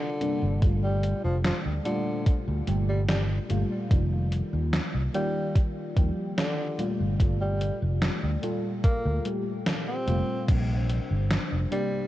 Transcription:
0.00 0.20 C3 medium
0.00 0.71 D3 loud
0.00 0.21 G3 medium
0.00 0.21 A#3 medium
0.00 0.22 D4 loud
0.00 0.17 F4 medium
0.20 0.57 C3 medium
0.20 0.57 G3 medium
0.20 0.57 A#3 medium
0.20 0.58 D4 loud
0.20 closed hi-hat medium
0.42 1.11 G1 medium
0.61 1.80 A#2 medium
0.61 1.80 G3 medium
0.61 1.81 A3 medium
0.61 1.81 F4 medium
0.61 kick loud
0.61 closed hi-hat medium
0.83 1.20 G3 medium
1.03 closed hi-hat medium
1.24 1.49 F1 medium
1.24 1.37 F3 medium
1.44 1.58 F3 medium
1.44 snare loud
1.44 closed hi-hat medium
1.65 1.78 D2 medium
1.85 2.63 A#2 loud
1.85 2.35 D3 medium
1.85 2.64 G3 medium
1.85 2.64 A3 medium
1.85 2.64 F4 loud
1.85 closed hi-hat medium
2.26 kick loud
2.26 closed hi-hat medium
2.48 2.60 D2 medium
2.67 3.38 G1 loud
2.67 3.45 A#2 medium
2.67 3.45 G3 medium
2.67 3.45 A3 medium
2.67 3.46 G4 medium
2.67 closed hi-hat medium
2.89 3.02 G3 medium
3.09 3.22 G3 medium
3.09 snare loud
3.09 closed hi-hat medium
3.49 3.63 G1 loud
3.49 3.86 A#2 loud
3.49 3.86 G3 medium
3.49 3.86 A3 medium
3.49 3.86 F4 loud
3.49 closed hi-hat medium
3.89 4.40 F1 loud
3.89 5.09 D#3 medium
3.89 5.09 G3 medium
3.89 5.10 A#3 medium
3.89 5.10 F4 medium
3.89 kick loud
3.89 closed hi-hat medium
4.32 closed hi-hat medium
4.53 4.78 D#2 medium
4.73 snare loud
4.73 closed hi-hat medium
4.94 5.07 C2 medium
5.14 5.92 D#3 medium
5.14 5.92 G3 medium
5.14 5.64 G3 loud
5.14 5.93 A#3 medium
5.14 5.93 F4 loud
5.14 closed hi-hat medium
5.55 kick loud
5.55 closed hi-hat medium
5.96 6.09 D#2 loud
5.96 6.74 F3 medium
5.96 6.74 G3 medium
5.96 6.74 A#3 medium
5.96 6.74 G4 medium
5.96 kick loud
5.96 closed hi-hat medium
6.38 6.87 D3 medium
6.38 snare loud
6.38 closed hi-hat medium
6.78 7.15 A#2 loud
6.78 7.15 G3 medium
6.78 7.15 A3 medium
6.78 7.15 F4 loud
6.78 closed hi-hat medium
7.00 7.69 G1 medium
7.18 8.37 A#2 medium
7.18 8.38 G3 medium
7.18 8.38 A3 medium
7.18 8.39 F4 medium
7.18 kick loud
7.18 closed hi-hat medium
7.41 7.78 G3 medium
7.61 closed hi-hat medium
7.82 8.07 F1 medium
8.02 snare loud
8.02 closed hi-hat medium
8.23 8.35 D2 medium
8.42 9.21 A#2 medium
8.42 9.21 G3 medium
8.42 9.22 F4 loud
8.42 9.21 A4 medium
8.42 closed hi-hat medium
8.84 9.34 A#3 loud
8.84 kick loud
8.84 closed hi-hat medium
9.05 9.18 D2 medium
9.24 10.02 A#2 medium
9.24 10.02 G3 medium
9.24 10.03 A3 medium
9.24 10.03 G4 medium
9.24 closed hi-hat medium
9.66 snare loud
9.66 closed hi-hat medium
9.88 10.49 C4 medium
10.07 10.20 F1 medium
10.07 10.43 A#2 medium
10.07 10.44 G3 medium
10.07 10.44 A3 medium
10.07 10.44 F4 loud
10.07 closed hi-hat medium
10.47 10.98 A#1 loud
10.47 11.66 C3 medium
10.47 11.67 G3 medium
10.47 11.67 A#3 medium
10.47 11.68 D4 medium
10.47 kick loud
10.47 closed hi-hat medium
10.47 crash medium
10.90 closed hi-hat medium
11.11 11.36 G1 loud
11.31 snare loud
11.31 closed hi-hat medium
11.52 11.64 F1 medium
11.71 12.07 C3 medium
11.71 12.07 G3 medium
11.71 12.07 G3 loud
11.71 12.07 A#3 medium
11.71 12.07 D4 loud
11.71 closed hi-hat medium

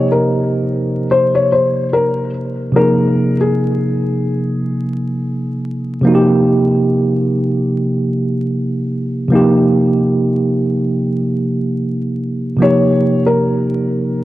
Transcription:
0.00 2.68 C3 medium
0.00 2.69 F3 medium
0.00 2.70 A#3 medium
0.00 2.71 D#4 medium
0.00 2.72 G4 medium
0.00 2.75 C5 soft
0.00 2.76 D#5 medium
0.12 1.06 A#4 medium
1.11 1.34 C5 medium
1.35 1.50 C#5 medium
1.52 1.89 C5 medium
1.93 2.30 A#4 medium
2.72 5.98 C3 medium
2.72 5.99 F3 medium
2.72 6.00 A#3 medium
2.76 6.00 D#4 medium
2.76 6.01 G#4 medium
2.76 3.36 A#4 medium
3.41 6.00 G#4 medium
6.01 9.27 C3 medium
6.01 9.28 F3 medium
6.01 9.29 A#3 medium
6.07 9.30 D#4 medium
6.07 6.13 F#4 medium
6.15 9.34 G4 medium
9.28 12.55 C3 medium
9.28 12.56 F3 medium
9.28 12.57 A#3 medium
9.33 12.57 D#4 medium
9.33 12.58 G4 medium
12.57 14.24 C3 medium
12.57 14.24 F3 medium
12.57 14.24 A#3 medium
12.62 14.24 D#4 medium
12.62 14.24 G4 medium
12.62 13.22 C#5 medium
13.26 14.24 A#4 medium

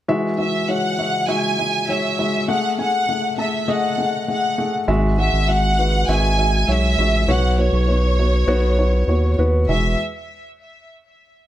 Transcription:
0.08 0.94 E3 medium
0.08 0.30 G#3 medium
0.08 0.30 F#4 medium
0.08 0.31 E5 loud
0.38 0.60 G#3 medium
0.38 0.60 F#4 medium
0.38 0.66 E5 medium
0.38 0.60 E5 medium
0.68 0.90 G#3 medium
0.68 0.91 F#4 medium
0.68 0.91 C#5 medium
0.68 1.29 F#5 medium
0.98 1.20 G#3 medium
0.98 1.21 F#4 soft
0.98 1.21 E5 medium
1.28 1.50 G#3 medium
1.28 1.50 F#4 medium
1.28 1.51 E5 medium
1.28 1.89 G#5 medium
1.59 1.81 G#3 medium
1.59 1.81 F#4 soft
1.59 1.81 E5 medium
1.89 2.11 G#3 medium
1.89 2.11 F#4 soft
1.89 2.11 C#5 medium
1.89 2.49 E5 medium
2.19 2.41 G#3 medium
2.19 2.41 F#4 medium
2.19 2.41 E5 medium
2.48 2.70 A3 medium
2.48 2.70 G#4 medium
2.48 2.71 F#5 medium
2.48 2.77 F#5 medium
2.79 3.01 A3 medium
2.79 3.01 G#4 medium
2.79 3.35 F#5 medium
2.79 3.01 G#5 medium
3.08 3.31 A3 medium
3.08 3.31 G#4 soft
3.08 3.31 F#5 medium
3.38 3.60 A3 medium
3.38 3.60 G#4 medium
3.38 3.67 E5 medium
3.38 3.61 A5 medium
3.68 3.90 A3 medium
3.68 3.90 G#4 medium
3.68 3.91 D#5 medium
3.68 4.29 F#5 medium
3.98 4.20 A3 medium
3.98 4.21 G#4 medium
3.98 4.21 F#5 medium
4.28 4.50 A3 medium
4.28 4.50 G#4 medium
4.28 4.51 F#5 medium
4.28 4.71 F#5 medium
4.58 4.80 A3 medium
4.58 4.80 G#4 medium
4.58 4.81 F#5 medium
4.88 5.30 G#1 medium
4.88 5.74 G#2 medium
4.88 5.10 G#3 medium
4.88 5.10 F#4 medium
4.88 5.10 E5 medium
5.18 5.41 G#3 medium
5.18 5.41 F#4 medium
5.18 5.46 E5 medium
5.18 5.41 F#5 medium
5.33 6.04 G#1 medium
5.48 5.71 G#3 medium
5.48 5.71 F#4 medium
5.48 5.71 E5 medium
5.48 6.09 F#5 medium
5.79 6.01 G#3 medium
5.79 6.01 F#4 medium
5.79 6.01 B4 medium
6.08 6.64 G#1 loud
6.08 6.31 G#3 medium
6.08 6.31 F#4 medium
6.08 6.31 E5 medium
6.08 6.68 G#5 medium
6.38 6.61 G#3 medium
6.38 6.61 F#4 medium
6.38 6.61 E5 medium
6.68 6.96 B1 medium
6.68 6.91 G#3 medium
6.68 6.91 F#4 medium
6.68 6.91 C#5 medium
6.68 7.28 E5 medium
6.98 7.26 A1 medium
6.98 7.21 G#3 medium
6.98 7.21 F#4 medium
6.98 7.21 E5 medium
7.28 7.70 B1 loud
7.28 8.14 B2 medium
7.28 7.50 B3 medium
7.28 7.51 F#4 medium
7.28 7.51 C#5 medium
7.28 7.59 F#5 medium
7.58 7.81 B3 medium
7.58 7.81 F#4 medium
7.58 9.39 C#5 medium
7.58 7.81 C#5 medium
7.73 8.44 B1 medium
7.88 8.11 B3 medium
7.88 8.11 F#4 medium
7.88 8.11 C#5 medium
8.19 8.41 B3 medium
8.19 8.41 F#4 medium
8.19 8.41 C#5 medium
8.47 9.04 B1 loud
8.47 8.70 B3 loud
8.47 8.70 F#4 medium
8.47 8.70 C#5 loud
8.78 9.01 B3 medium
8.78 9.01 F#4 medium
8.78 9.01 C#5 medium
9.07 9.36 D#2 medium
9.07 9.31 B3 medium
9.07 9.31 F#4 medium
9.07 9.31 C#5 medium
9.38 9.66 D#2 medium
9.38 9.61 B3 medium
9.38 9.61 F#4 medium
9.38 9.61 B4 medium
9.68 9.96 E1 medium
9.68 9.97 E2 medium
9.68 9.97 G#3 medium
9.68 9.96 F#4 medium
9.68 9.97 E5 medium

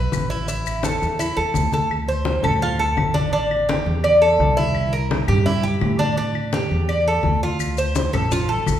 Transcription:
0.00 0.29 B4 medium
0.12 0.96 A1 medium
0.12 high conga medium
0.12 claves medium
0.12 maracas medium
0.30 0.47 E4 medium
0.30 maracas soft
0.48 0.83 E4 medium
0.48 high conga soft
0.48 maracas medium
0.66 high conga soft
0.66 claves medium
0.66 maracas medium
0.83 1.19 A4 medium
0.83 high conga loud
0.83 maracas medium
1.02 1.35 E2 medium
1.02 high conga soft
1.02 maracas soft
1.19 1.37 E4 medium
1.19 high conga soft
1.19 claves medium
1.19 maracas medium
1.37 1.54 E2 medium
1.37 1.72 A4 medium
1.37 high conga soft
1.54 2.38 D2 medium
1.54 high conga medium
1.54 maracas medium
1.72 1.90 A4 medium
1.72 high conga medium
1.72 maracas soft
1.91 high conga soft
1.91 claves medium
2.08 2.43 C5 medium
2.08 high conga soft
2.25 high conga medium
2.43 2.94 D2 medium
2.43 2.61 A4 medium
2.43 high conga soft
2.43 low conga medium
2.43 claves medium
2.61 2.79 F4 medium
2.61 high conga soft
2.79 3.14 A4 medium
2.79 high conga soft
2.97 3.81 A1 medium
2.97 high conga medium
2.97 claves medium
3.14 3.32 D4 medium
3.14 high conga medium
3.33 3.67 D4 medium
3.33 high conga soft
3.51 high conga soft
3.51 claves medium
3.69 4.03 G4 medium
3.69 high conga loud
3.86 4.36 E2 loud
3.86 high conga soft
4.04 4.21 D5 medium
4.04 high conga soft
4.04 claves medium
4.22 4.56 A4 medium
4.22 high conga soft
4.39 5.23 C2 medium
4.39 high conga medium
4.57 4.92 E4 medium
4.57 high conga medium
4.75 high conga soft
4.75 claves medium
4.93 5.28 A#4 medium
4.93 high conga soft
5.11 high conga loud
5.28 5.78 G2 loud
5.28 5.46 G4 medium
5.28 high conga soft
5.28 low conga medium
5.28 claves medium
5.46 5.63 E4 medium
5.46 high conga soft
5.46 low conga medium
5.63 5.98 G4 medium
5.63 high conga soft
5.81 6.65 A2 medium
5.81 high conga medium
5.81 claves medium
5.99 6.16 D4 medium
5.99 high conga medium
6.17 6.52 D4 medium
6.17 high conga soft
6.35 high conga soft
6.35 claves medium
6.53 6.88 G4 medium
6.53 high conga medium
6.70 7.21 E2 medium
6.70 high conga soft
6.88 7.06 D5 medium
6.88 high conga soft
6.88 claves medium
7.06 7.42 A4 medium
7.06 high conga soft
7.23 8.08 D2 medium
7.23 high conga medium
7.43 7.77 F4 medium
7.60 high conga soft
7.60 claves medium
7.60 maracas medium
7.77 8.13 C5 medium
7.77 high conga soft
7.77 maracas medium
7.95 high conga loud
7.95 maracas medium
8.13 8.63 A1 medium
8.13 8.31 A4 medium
8.13 high conga soft
8.13 low conga medium
8.13 claves medium
8.13 maracas soft
8.32 8.49 F4 medium
8.32 high conga soft
8.32 low conga medium
8.32 maracas medium
8.49 8.80 A4 medium
8.49 high conga soft
8.66 8.80 A1 medium
8.66 high conga medium
8.66 claves medium
8.66 maracas medium

